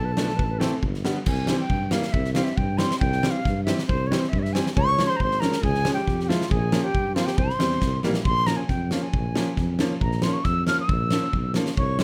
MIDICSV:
0, 0, Header, 1, 6, 480
1, 0, Start_track
1, 0, Tempo, 437956
1, 425, Time_signature, 2, 2, 24, 8
1, 13193, End_track
2, 0, Start_track
2, 0, Title_t, "Flute"
2, 0, Program_c, 0, 73
2, 0, Note_on_c, 0, 81, 80
2, 922, Note_off_c, 0, 81, 0
2, 1395, Note_on_c, 0, 80, 81
2, 1725, Note_off_c, 0, 80, 0
2, 1753, Note_on_c, 0, 79, 80
2, 2104, Note_on_c, 0, 77, 76
2, 2120, Note_off_c, 0, 79, 0
2, 2328, Note_on_c, 0, 76, 81
2, 2345, Note_off_c, 0, 77, 0
2, 2555, Note_off_c, 0, 76, 0
2, 2562, Note_on_c, 0, 77, 83
2, 2673, Note_on_c, 0, 76, 74
2, 2690, Note_off_c, 0, 77, 0
2, 2815, Note_on_c, 0, 79, 80
2, 2832, Note_off_c, 0, 76, 0
2, 3045, Note_on_c, 0, 84, 85
2, 3062, Note_off_c, 0, 79, 0
2, 3272, Note_off_c, 0, 84, 0
2, 3279, Note_on_c, 0, 79, 97
2, 3623, Note_on_c, 0, 77, 91
2, 3640, Note_off_c, 0, 79, 0
2, 3987, Note_off_c, 0, 77, 0
2, 3994, Note_on_c, 0, 76, 85
2, 4229, Note_off_c, 0, 76, 0
2, 4233, Note_on_c, 0, 72, 97
2, 4460, Note_on_c, 0, 73, 86
2, 4477, Note_off_c, 0, 72, 0
2, 4596, Note_on_c, 0, 72, 73
2, 4612, Note_off_c, 0, 73, 0
2, 4699, Note_on_c, 0, 76, 83
2, 4716, Note_off_c, 0, 72, 0
2, 4811, Note_on_c, 0, 73, 69
2, 4827, Note_off_c, 0, 76, 0
2, 4850, Note_on_c, 0, 76, 93
2, 4866, Note_off_c, 0, 73, 0
2, 4964, Note_on_c, 0, 80, 86
2, 4981, Note_off_c, 0, 76, 0
2, 5196, Note_off_c, 0, 80, 0
2, 5203, Note_on_c, 0, 85, 111
2, 5544, Note_off_c, 0, 85, 0
2, 5550, Note_on_c, 0, 84, 90
2, 5659, Note_on_c, 0, 82, 82
2, 5675, Note_off_c, 0, 84, 0
2, 5708, Note_on_c, 0, 84, 100
2, 5725, Note_off_c, 0, 82, 0
2, 5919, Note_on_c, 0, 82, 84
2, 5936, Note_off_c, 0, 84, 0
2, 6168, Note_off_c, 0, 82, 0
2, 6173, Note_on_c, 0, 80, 96
2, 6504, Note_off_c, 0, 80, 0
2, 6511, Note_on_c, 0, 79, 74
2, 6801, Note_off_c, 0, 79, 0
2, 6844, Note_on_c, 0, 79, 58
2, 6883, Note_on_c, 0, 77, 74
2, 6899, Note_off_c, 0, 79, 0
2, 7121, Note_off_c, 0, 77, 0
2, 7128, Note_on_c, 0, 80, 84
2, 7486, Note_on_c, 0, 79, 98
2, 7503, Note_off_c, 0, 80, 0
2, 7839, Note_off_c, 0, 79, 0
2, 7845, Note_on_c, 0, 77, 75
2, 7951, Note_on_c, 0, 79, 87
2, 7968, Note_off_c, 0, 77, 0
2, 8084, Note_on_c, 0, 84, 90
2, 8101, Note_off_c, 0, 79, 0
2, 8809, Note_off_c, 0, 84, 0
2, 9044, Note_on_c, 0, 84, 108
2, 9279, Note_on_c, 0, 82, 85
2, 9295, Note_off_c, 0, 84, 0
2, 9386, Note_on_c, 0, 80, 73
2, 9403, Note_off_c, 0, 82, 0
2, 9527, Note_on_c, 0, 79, 76
2, 9543, Note_off_c, 0, 80, 0
2, 9781, Note_on_c, 0, 77, 70
2, 9798, Note_off_c, 0, 79, 0
2, 9888, Note_on_c, 0, 80, 71
2, 9905, Note_off_c, 0, 77, 0
2, 10734, Note_off_c, 0, 80, 0
2, 10981, Note_on_c, 0, 82, 83
2, 11211, Note_on_c, 0, 84, 83
2, 11228, Note_off_c, 0, 82, 0
2, 11324, Note_on_c, 0, 85, 82
2, 11341, Note_off_c, 0, 84, 0
2, 11449, Note_on_c, 0, 88, 93
2, 11465, Note_off_c, 0, 85, 0
2, 11692, Note_off_c, 0, 88, 0
2, 11699, Note_on_c, 0, 89, 80
2, 11812, Note_off_c, 0, 89, 0
2, 11843, Note_on_c, 0, 88, 73
2, 12632, Note_off_c, 0, 88, 0
2, 12912, Note_on_c, 0, 85, 82
2, 13134, Note_off_c, 0, 85, 0
2, 13193, End_track
3, 0, Start_track
3, 0, Title_t, "Clarinet"
3, 0, Program_c, 1, 71
3, 58, Note_on_c, 1, 71, 57
3, 141, Note_on_c, 1, 69, 58
3, 157, Note_off_c, 1, 71, 0
3, 229, Note_on_c, 1, 71, 60
3, 245, Note_off_c, 1, 69, 0
3, 310, Note_on_c, 1, 69, 62
3, 327, Note_off_c, 1, 71, 0
3, 400, Note_on_c, 1, 71, 58
3, 417, Note_off_c, 1, 69, 0
3, 491, Note_on_c, 1, 69, 46
3, 507, Note_off_c, 1, 71, 0
3, 556, Note_on_c, 1, 71, 72
3, 572, Note_off_c, 1, 69, 0
3, 644, Note_on_c, 1, 69, 72
3, 661, Note_off_c, 1, 71, 0
3, 904, Note_off_c, 1, 69, 0
3, 5228, Note_on_c, 1, 73, 82
3, 5317, Note_on_c, 1, 72, 74
3, 5333, Note_off_c, 1, 73, 0
3, 5385, Note_on_c, 1, 73, 106
3, 5402, Note_off_c, 1, 72, 0
3, 5587, Note_on_c, 1, 72, 94
3, 5604, Note_off_c, 1, 73, 0
3, 5734, Note_off_c, 1, 72, 0
3, 5739, Note_on_c, 1, 72, 86
3, 5932, Note_on_c, 1, 70, 81
3, 5948, Note_off_c, 1, 72, 0
3, 6173, Note_on_c, 1, 68, 70
3, 6189, Note_off_c, 1, 70, 0
3, 6531, Note_on_c, 1, 67, 81
3, 6547, Note_off_c, 1, 68, 0
3, 6899, Note_on_c, 1, 65, 73
3, 6915, Note_off_c, 1, 67, 0
3, 7133, Note_on_c, 1, 68, 70
3, 7150, Note_off_c, 1, 65, 0
3, 7484, Note_off_c, 1, 68, 0
3, 7491, Note_on_c, 1, 67, 80
3, 7836, Note_on_c, 1, 65, 73
3, 7852, Note_off_c, 1, 67, 0
3, 7965, Note_on_c, 1, 67, 70
3, 7982, Note_off_c, 1, 65, 0
3, 8086, Note_on_c, 1, 72, 72
3, 8103, Note_off_c, 1, 67, 0
3, 8810, Note_off_c, 1, 72, 0
3, 12916, Note_on_c, 1, 73, 75
3, 13193, Note_off_c, 1, 73, 0
3, 13193, End_track
4, 0, Start_track
4, 0, Title_t, "Upright piano"
4, 0, Program_c, 2, 0
4, 185, Note_on_c, 2, 57, 64
4, 185, Note_on_c, 2, 62, 76
4, 190, Note_on_c, 2, 53, 66
4, 305, Note_off_c, 2, 57, 0
4, 305, Note_off_c, 2, 62, 0
4, 308, Note_off_c, 2, 53, 0
4, 654, Note_on_c, 2, 52, 86
4, 657, Note_on_c, 2, 57, 72
4, 661, Note_on_c, 2, 60, 90
4, 780, Note_off_c, 2, 52, 0
4, 781, Note_off_c, 2, 57, 0
4, 783, Note_off_c, 2, 60, 0
4, 1149, Note_on_c, 2, 59, 78
4, 1151, Note_on_c, 2, 50, 79
4, 1152, Note_on_c, 2, 55, 68
4, 1267, Note_off_c, 2, 59, 0
4, 1268, Note_off_c, 2, 50, 0
4, 1268, Note_off_c, 2, 55, 0
4, 1630, Note_on_c, 2, 55, 62
4, 1633, Note_on_c, 2, 52, 73
4, 1634, Note_on_c, 2, 60, 79
4, 1747, Note_off_c, 2, 55, 0
4, 1749, Note_off_c, 2, 52, 0
4, 1749, Note_off_c, 2, 60, 0
4, 2100, Note_on_c, 2, 55, 65
4, 2100, Note_on_c, 2, 58, 83
4, 2103, Note_on_c, 2, 52, 72
4, 2221, Note_off_c, 2, 58, 0
4, 2222, Note_off_c, 2, 55, 0
4, 2223, Note_off_c, 2, 52, 0
4, 2584, Note_on_c, 2, 55, 63
4, 2585, Note_on_c, 2, 52, 77
4, 2585, Note_on_c, 2, 60, 84
4, 2703, Note_off_c, 2, 55, 0
4, 2704, Note_off_c, 2, 52, 0
4, 2704, Note_off_c, 2, 60, 0
4, 3055, Note_on_c, 2, 52, 71
4, 3056, Note_on_c, 2, 60, 80
4, 3061, Note_on_c, 2, 55, 68
4, 3178, Note_off_c, 2, 52, 0
4, 3179, Note_off_c, 2, 60, 0
4, 3181, Note_off_c, 2, 55, 0
4, 3539, Note_on_c, 2, 60, 86
4, 3540, Note_on_c, 2, 55, 70
4, 3546, Note_on_c, 2, 52, 74
4, 3660, Note_off_c, 2, 60, 0
4, 3661, Note_off_c, 2, 55, 0
4, 3663, Note_off_c, 2, 52, 0
4, 4020, Note_on_c, 2, 52, 76
4, 4024, Note_on_c, 2, 55, 60
4, 4027, Note_on_c, 2, 60, 76
4, 4140, Note_off_c, 2, 52, 0
4, 4142, Note_off_c, 2, 55, 0
4, 4144, Note_off_c, 2, 60, 0
4, 4507, Note_on_c, 2, 52, 78
4, 4508, Note_on_c, 2, 60, 85
4, 4510, Note_on_c, 2, 55, 67
4, 4623, Note_off_c, 2, 52, 0
4, 4624, Note_off_c, 2, 55, 0
4, 4624, Note_off_c, 2, 60, 0
4, 4985, Note_on_c, 2, 55, 62
4, 4987, Note_on_c, 2, 52, 64
4, 4987, Note_on_c, 2, 60, 73
4, 5101, Note_off_c, 2, 55, 0
4, 5102, Note_off_c, 2, 52, 0
4, 5102, Note_off_c, 2, 60, 0
4, 5467, Note_on_c, 2, 56, 60
4, 5469, Note_on_c, 2, 53, 77
4, 5475, Note_on_c, 2, 61, 79
4, 5582, Note_off_c, 2, 56, 0
4, 5583, Note_off_c, 2, 53, 0
4, 5586, Note_off_c, 2, 61, 0
4, 5938, Note_on_c, 2, 56, 71
4, 5942, Note_on_c, 2, 53, 67
4, 5946, Note_on_c, 2, 61, 82
4, 6057, Note_off_c, 2, 56, 0
4, 6059, Note_off_c, 2, 53, 0
4, 6061, Note_off_c, 2, 61, 0
4, 6407, Note_on_c, 2, 56, 71
4, 6408, Note_on_c, 2, 61, 94
4, 6410, Note_on_c, 2, 53, 66
4, 6531, Note_off_c, 2, 56, 0
4, 6532, Note_off_c, 2, 53, 0
4, 6532, Note_off_c, 2, 61, 0
4, 6897, Note_on_c, 2, 53, 75
4, 6897, Note_on_c, 2, 56, 73
4, 6898, Note_on_c, 2, 64, 71
4, 7016, Note_off_c, 2, 53, 0
4, 7016, Note_off_c, 2, 56, 0
4, 7016, Note_off_c, 2, 64, 0
4, 7369, Note_on_c, 2, 58, 76
4, 7371, Note_on_c, 2, 61, 85
4, 7373, Note_on_c, 2, 53, 83
4, 7492, Note_off_c, 2, 58, 0
4, 7493, Note_off_c, 2, 61, 0
4, 7494, Note_off_c, 2, 53, 0
4, 7847, Note_on_c, 2, 58, 60
4, 7849, Note_on_c, 2, 53, 71
4, 7850, Note_on_c, 2, 60, 79
4, 7971, Note_off_c, 2, 58, 0
4, 7972, Note_off_c, 2, 53, 0
4, 7972, Note_off_c, 2, 60, 0
4, 8317, Note_on_c, 2, 52, 80
4, 8319, Note_on_c, 2, 55, 68
4, 8326, Note_on_c, 2, 60, 89
4, 8446, Note_off_c, 2, 52, 0
4, 8446, Note_off_c, 2, 55, 0
4, 8450, Note_off_c, 2, 60, 0
4, 8813, Note_on_c, 2, 58, 96
4, 8817, Note_on_c, 2, 55, 84
4, 8818, Note_on_c, 2, 52, 76
4, 8934, Note_off_c, 2, 58, 0
4, 8936, Note_off_c, 2, 52, 0
4, 8936, Note_off_c, 2, 55, 0
4, 9289, Note_on_c, 2, 53, 74
4, 9293, Note_on_c, 2, 58, 65
4, 9294, Note_on_c, 2, 61, 70
4, 9412, Note_off_c, 2, 53, 0
4, 9414, Note_off_c, 2, 58, 0
4, 9415, Note_off_c, 2, 61, 0
4, 9780, Note_on_c, 2, 58, 54
4, 9780, Note_on_c, 2, 61, 76
4, 9782, Note_on_c, 2, 53, 65
4, 9898, Note_off_c, 2, 58, 0
4, 9898, Note_off_c, 2, 61, 0
4, 9899, Note_off_c, 2, 53, 0
4, 10248, Note_on_c, 2, 61, 80
4, 10254, Note_on_c, 2, 53, 74
4, 10255, Note_on_c, 2, 58, 64
4, 10373, Note_off_c, 2, 61, 0
4, 10375, Note_off_c, 2, 53, 0
4, 10376, Note_off_c, 2, 58, 0
4, 10740, Note_on_c, 2, 58, 75
4, 10741, Note_on_c, 2, 53, 86
4, 10742, Note_on_c, 2, 61, 84
4, 10860, Note_off_c, 2, 53, 0
4, 10860, Note_off_c, 2, 58, 0
4, 10860, Note_off_c, 2, 61, 0
4, 11234, Note_on_c, 2, 53, 64
4, 11237, Note_on_c, 2, 61, 77
4, 11238, Note_on_c, 2, 58, 70
4, 11347, Note_off_c, 2, 53, 0
4, 11349, Note_off_c, 2, 58, 0
4, 11349, Note_off_c, 2, 61, 0
4, 11701, Note_on_c, 2, 58, 59
4, 11706, Note_on_c, 2, 61, 69
4, 11708, Note_on_c, 2, 53, 72
4, 11822, Note_off_c, 2, 58, 0
4, 11824, Note_off_c, 2, 61, 0
4, 11825, Note_off_c, 2, 53, 0
4, 12193, Note_on_c, 2, 58, 65
4, 12197, Note_on_c, 2, 61, 74
4, 12200, Note_on_c, 2, 53, 74
4, 12309, Note_off_c, 2, 58, 0
4, 12311, Note_off_c, 2, 61, 0
4, 12312, Note_off_c, 2, 53, 0
4, 12668, Note_on_c, 2, 58, 74
4, 12671, Note_on_c, 2, 53, 77
4, 12671, Note_on_c, 2, 61, 76
4, 12787, Note_off_c, 2, 58, 0
4, 12789, Note_off_c, 2, 53, 0
4, 12789, Note_off_c, 2, 61, 0
4, 13153, Note_on_c, 2, 52, 66
4, 13154, Note_on_c, 2, 55, 65
4, 13157, Note_on_c, 2, 60, 82
4, 13193, Note_off_c, 2, 52, 0
4, 13193, Note_off_c, 2, 55, 0
4, 13193, Note_off_c, 2, 60, 0
4, 13193, End_track
5, 0, Start_track
5, 0, Title_t, "Tuba"
5, 0, Program_c, 3, 58
5, 0, Note_on_c, 3, 35, 78
5, 434, Note_on_c, 3, 33, 80
5, 450, Note_off_c, 3, 35, 0
5, 719, Note_off_c, 3, 33, 0
5, 905, Note_on_c, 3, 31, 81
5, 1193, Note_off_c, 3, 31, 0
5, 1388, Note_on_c, 3, 36, 99
5, 1674, Note_off_c, 3, 36, 0
5, 1857, Note_on_c, 3, 43, 84
5, 2147, Note_off_c, 3, 43, 0
5, 2343, Note_on_c, 3, 36, 103
5, 2631, Note_off_c, 3, 36, 0
5, 2824, Note_on_c, 3, 43, 93
5, 3111, Note_off_c, 3, 43, 0
5, 3303, Note_on_c, 3, 36, 105
5, 3590, Note_off_c, 3, 36, 0
5, 3788, Note_on_c, 3, 43, 95
5, 4073, Note_off_c, 3, 43, 0
5, 4260, Note_on_c, 3, 36, 97
5, 4548, Note_off_c, 3, 36, 0
5, 4743, Note_on_c, 3, 43, 93
5, 5029, Note_off_c, 3, 43, 0
5, 5223, Note_on_c, 3, 37, 104
5, 5509, Note_off_c, 3, 37, 0
5, 5702, Note_on_c, 3, 32, 81
5, 5988, Note_off_c, 3, 32, 0
5, 6169, Note_on_c, 3, 37, 105
5, 6459, Note_off_c, 3, 37, 0
5, 6654, Note_on_c, 3, 41, 83
5, 6942, Note_off_c, 3, 41, 0
5, 7136, Note_on_c, 3, 34, 108
5, 7423, Note_off_c, 3, 34, 0
5, 7606, Note_on_c, 3, 43, 75
5, 7897, Note_off_c, 3, 43, 0
5, 8088, Note_on_c, 3, 36, 98
5, 8234, Note_off_c, 3, 36, 0
5, 8322, Note_on_c, 3, 40, 72
5, 8544, Note_off_c, 3, 40, 0
5, 8560, Note_on_c, 3, 36, 90
5, 8783, Note_off_c, 3, 36, 0
5, 8810, Note_on_c, 3, 34, 70
5, 9028, Note_off_c, 3, 34, 0
5, 9050, Note_on_c, 3, 34, 90
5, 9340, Note_off_c, 3, 34, 0
5, 9527, Note_on_c, 3, 41, 81
5, 9818, Note_off_c, 3, 41, 0
5, 10015, Note_on_c, 3, 34, 83
5, 10304, Note_off_c, 3, 34, 0
5, 10487, Note_on_c, 3, 41, 84
5, 10779, Note_off_c, 3, 41, 0
5, 10974, Note_on_c, 3, 34, 101
5, 11265, Note_off_c, 3, 34, 0
5, 11452, Note_on_c, 3, 41, 88
5, 11744, Note_off_c, 3, 41, 0
5, 11934, Note_on_c, 3, 34, 95
5, 12226, Note_off_c, 3, 34, 0
5, 12423, Note_on_c, 3, 35, 84
5, 12713, Note_off_c, 3, 35, 0
5, 12904, Note_on_c, 3, 36, 96
5, 13193, Note_off_c, 3, 36, 0
5, 13193, End_track
6, 0, Start_track
6, 0, Title_t, "Drums"
6, 185, Note_on_c, 9, 38, 91
6, 295, Note_off_c, 9, 38, 0
6, 314, Note_on_c, 9, 38, 28
6, 424, Note_off_c, 9, 38, 0
6, 429, Note_on_c, 9, 36, 83
6, 539, Note_off_c, 9, 36, 0
6, 671, Note_on_c, 9, 38, 93
6, 780, Note_off_c, 9, 38, 0
6, 906, Note_on_c, 9, 36, 71
6, 1016, Note_off_c, 9, 36, 0
6, 1031, Note_on_c, 9, 38, 25
6, 1140, Note_off_c, 9, 38, 0
6, 1147, Note_on_c, 9, 38, 81
6, 1256, Note_off_c, 9, 38, 0
6, 1381, Note_on_c, 9, 49, 77
6, 1387, Note_on_c, 9, 36, 87
6, 1490, Note_off_c, 9, 49, 0
6, 1496, Note_off_c, 9, 36, 0
6, 1613, Note_on_c, 9, 38, 93
6, 1723, Note_off_c, 9, 38, 0
6, 1860, Note_on_c, 9, 36, 76
6, 1970, Note_off_c, 9, 36, 0
6, 2093, Note_on_c, 9, 38, 91
6, 2203, Note_off_c, 9, 38, 0
6, 2217, Note_on_c, 9, 38, 65
6, 2327, Note_off_c, 9, 38, 0
6, 2343, Note_on_c, 9, 36, 88
6, 2453, Note_off_c, 9, 36, 0
6, 2460, Note_on_c, 9, 38, 28
6, 2570, Note_off_c, 9, 38, 0
6, 2574, Note_on_c, 9, 38, 96
6, 2683, Note_off_c, 9, 38, 0
6, 2698, Note_on_c, 9, 38, 27
6, 2808, Note_off_c, 9, 38, 0
6, 2822, Note_on_c, 9, 36, 77
6, 2932, Note_off_c, 9, 36, 0
6, 3052, Note_on_c, 9, 38, 86
6, 3162, Note_off_c, 9, 38, 0
6, 3186, Note_on_c, 9, 38, 75
6, 3295, Note_off_c, 9, 38, 0
6, 3303, Note_on_c, 9, 36, 96
6, 3412, Note_off_c, 9, 36, 0
6, 3421, Note_on_c, 9, 38, 26
6, 3530, Note_off_c, 9, 38, 0
6, 3542, Note_on_c, 9, 38, 98
6, 3652, Note_off_c, 9, 38, 0
6, 3786, Note_on_c, 9, 36, 79
6, 3792, Note_on_c, 9, 38, 28
6, 3895, Note_off_c, 9, 36, 0
6, 3901, Note_off_c, 9, 38, 0
6, 4020, Note_on_c, 9, 38, 81
6, 4130, Note_off_c, 9, 38, 0
6, 4149, Note_on_c, 9, 38, 61
6, 4259, Note_off_c, 9, 38, 0
6, 4267, Note_on_c, 9, 36, 80
6, 4377, Note_off_c, 9, 36, 0
6, 4514, Note_on_c, 9, 38, 89
6, 4623, Note_off_c, 9, 38, 0
6, 4641, Note_on_c, 9, 38, 27
6, 4748, Note_on_c, 9, 36, 64
6, 4750, Note_off_c, 9, 38, 0
6, 4858, Note_off_c, 9, 36, 0
6, 4878, Note_on_c, 9, 38, 28
6, 4986, Note_off_c, 9, 38, 0
6, 4986, Note_on_c, 9, 38, 85
6, 5096, Note_off_c, 9, 38, 0
6, 5110, Note_on_c, 9, 38, 61
6, 5219, Note_off_c, 9, 38, 0
6, 5225, Note_on_c, 9, 36, 94
6, 5335, Note_off_c, 9, 36, 0
6, 5465, Note_on_c, 9, 38, 96
6, 5575, Note_off_c, 9, 38, 0
6, 5585, Note_on_c, 9, 38, 27
6, 5695, Note_off_c, 9, 38, 0
6, 5700, Note_on_c, 9, 36, 70
6, 5810, Note_off_c, 9, 36, 0
6, 5820, Note_on_c, 9, 38, 26
6, 5930, Note_off_c, 9, 38, 0
6, 5939, Note_on_c, 9, 38, 76
6, 6048, Note_off_c, 9, 38, 0
6, 6055, Note_on_c, 9, 38, 70
6, 6164, Note_off_c, 9, 38, 0
6, 6175, Note_on_c, 9, 36, 79
6, 6284, Note_off_c, 9, 36, 0
6, 6297, Note_on_c, 9, 38, 27
6, 6406, Note_off_c, 9, 38, 0
6, 6411, Note_on_c, 9, 38, 97
6, 6520, Note_off_c, 9, 38, 0
6, 6548, Note_on_c, 9, 38, 22
6, 6658, Note_off_c, 9, 38, 0
6, 6658, Note_on_c, 9, 36, 68
6, 6663, Note_on_c, 9, 38, 31
6, 6768, Note_off_c, 9, 36, 0
6, 6773, Note_off_c, 9, 38, 0
6, 6791, Note_on_c, 9, 38, 34
6, 6901, Note_off_c, 9, 38, 0
6, 6908, Note_on_c, 9, 38, 89
6, 7018, Note_off_c, 9, 38, 0
6, 7030, Note_on_c, 9, 38, 66
6, 7137, Note_on_c, 9, 36, 92
6, 7140, Note_off_c, 9, 38, 0
6, 7246, Note_off_c, 9, 36, 0
6, 7369, Note_on_c, 9, 38, 94
6, 7479, Note_off_c, 9, 38, 0
6, 7613, Note_on_c, 9, 36, 79
6, 7722, Note_off_c, 9, 36, 0
6, 7848, Note_on_c, 9, 38, 80
6, 7957, Note_off_c, 9, 38, 0
6, 7968, Note_on_c, 9, 38, 66
6, 8078, Note_off_c, 9, 38, 0
6, 8089, Note_on_c, 9, 36, 94
6, 8198, Note_off_c, 9, 36, 0
6, 8215, Note_on_c, 9, 38, 26
6, 8324, Note_off_c, 9, 38, 0
6, 8329, Note_on_c, 9, 38, 98
6, 8439, Note_off_c, 9, 38, 0
6, 8452, Note_on_c, 9, 38, 21
6, 8560, Note_off_c, 9, 38, 0
6, 8560, Note_on_c, 9, 38, 55
6, 8567, Note_on_c, 9, 36, 72
6, 8670, Note_off_c, 9, 38, 0
6, 8677, Note_off_c, 9, 36, 0
6, 8803, Note_on_c, 9, 38, 65
6, 8912, Note_off_c, 9, 38, 0
6, 8922, Note_on_c, 9, 38, 74
6, 9032, Note_off_c, 9, 38, 0
6, 9045, Note_on_c, 9, 36, 91
6, 9155, Note_off_c, 9, 36, 0
6, 9278, Note_on_c, 9, 38, 81
6, 9388, Note_off_c, 9, 38, 0
6, 9524, Note_on_c, 9, 38, 28
6, 9527, Note_on_c, 9, 36, 72
6, 9634, Note_off_c, 9, 38, 0
6, 9636, Note_off_c, 9, 36, 0
6, 9764, Note_on_c, 9, 38, 78
6, 9873, Note_off_c, 9, 38, 0
6, 10012, Note_on_c, 9, 36, 82
6, 10122, Note_off_c, 9, 36, 0
6, 10253, Note_on_c, 9, 38, 90
6, 10363, Note_off_c, 9, 38, 0
6, 10491, Note_on_c, 9, 38, 26
6, 10493, Note_on_c, 9, 36, 62
6, 10601, Note_off_c, 9, 38, 0
6, 10602, Note_off_c, 9, 36, 0
6, 10728, Note_on_c, 9, 38, 86
6, 10837, Note_off_c, 9, 38, 0
6, 10974, Note_on_c, 9, 36, 75
6, 11083, Note_off_c, 9, 36, 0
6, 11088, Note_on_c, 9, 38, 26
6, 11197, Note_off_c, 9, 38, 0
6, 11200, Note_on_c, 9, 38, 100
6, 11310, Note_off_c, 9, 38, 0
6, 11440, Note_on_c, 9, 38, 26
6, 11452, Note_on_c, 9, 36, 75
6, 11550, Note_off_c, 9, 38, 0
6, 11562, Note_off_c, 9, 36, 0
6, 11690, Note_on_c, 9, 38, 79
6, 11800, Note_off_c, 9, 38, 0
6, 11937, Note_on_c, 9, 36, 95
6, 12046, Note_off_c, 9, 36, 0
6, 12171, Note_on_c, 9, 38, 93
6, 12281, Note_off_c, 9, 38, 0
6, 12422, Note_on_c, 9, 36, 69
6, 12531, Note_off_c, 9, 36, 0
6, 12649, Note_on_c, 9, 38, 80
6, 12759, Note_off_c, 9, 38, 0
6, 12778, Note_on_c, 9, 38, 71
6, 12888, Note_off_c, 9, 38, 0
6, 12904, Note_on_c, 9, 36, 87
6, 13014, Note_off_c, 9, 36, 0
6, 13139, Note_on_c, 9, 38, 94
6, 13193, Note_off_c, 9, 38, 0
6, 13193, End_track
0, 0, End_of_file